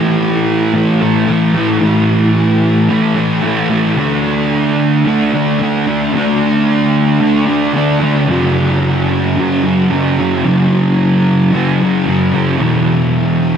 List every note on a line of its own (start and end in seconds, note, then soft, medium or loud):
0.00 0.72 A2 medium
0.00 0.74 E3 medium
0.00 0.75 A3 medium
0.73 1.27 A2 medium
0.73 1.02 E3 medium
0.73 1.00 A3 medium
1.01 1.29 E3 medium
1.01 1.30 A3 medium
1.28 1.79 A2 medium
1.28 1.56 E3 medium
1.28 1.53 A3 medium
1.54 1.80 E3 soft
1.54 1.82 A3 medium
1.80 2.88 A2 medium
1.80 2.89 E3 medium
1.80 2.90 A3 medium
2.89 3.41 A2 medium
2.89 3.17 E3 medium
2.89 3.15 A3 medium
3.15 3.42 E3 medium
3.15 3.45 A3 medium
3.42 3.95 A2 medium
3.42 3.71 E3 medium
3.42 3.69 A3 medium
3.70 3.97 E3 medium
3.70 3.99 A3 medium
3.97 5.04 D3 medium
3.97 5.06 A3 medium
3.97 5.07 D4 medium
5.05 5.59 D3 medium
5.05 5.36 A3 medium
5.05 5.32 D4 medium
5.33 5.61 A3 medium
5.33 5.62 D4 medium
5.60 6.12 D3 medium
5.60 5.89 A3 medium
5.60 5.86 D4 medium
5.87 6.15 A3 medium
5.87 6.16 D4 medium
6.13 7.19 D3 medium
6.13 7.21 A3 medium
6.13 7.21 D4 loud
7.20 7.72 D3 medium
7.20 7.49 A3 medium
7.20 7.45 D4 medium
7.47 7.75 A3 medium
7.47 7.75 D4 medium
7.74 8.27 D3 medium
7.74 8.03 A3 medium
7.74 7.99 D4 medium
8.00 8.30 A3 medium
8.00 8.26 D4 medium
8.28 9.35 F#2 medium
8.28 9.37 C#3 medium
8.28 9.38 F#3 medium
9.36 9.90 F#2 medium
9.36 9.65 C#3 medium
9.36 9.62 F#3 medium
9.64 9.91 C#3 medium
9.64 9.92 F#3 medium
9.91 10.43 F#2 medium
9.91 10.19 C#3 medium
9.91 10.17 F#3 medium
10.18 10.44 C#3 medium
10.18 10.46 F#3 medium
10.45 11.50 F#2 medium
10.45 11.52 C#3 medium
10.45 11.53 F#3 loud
11.51 12.05 F#2 medium
11.51 11.82 C#3 medium
11.51 11.79 F#3 medium
11.80 12.07 C#3 medium
11.80 12.08 F#3 medium
12.06 12.58 F#2 medium
12.06 12.35 C#3 medium
12.06 12.32 F#3 medium
12.34 12.59 C#3 medium
12.34 12.58 F#3 medium
12.58 13.57 E2 medium
12.58 13.57 B2 loud
12.58 13.57 E3 loud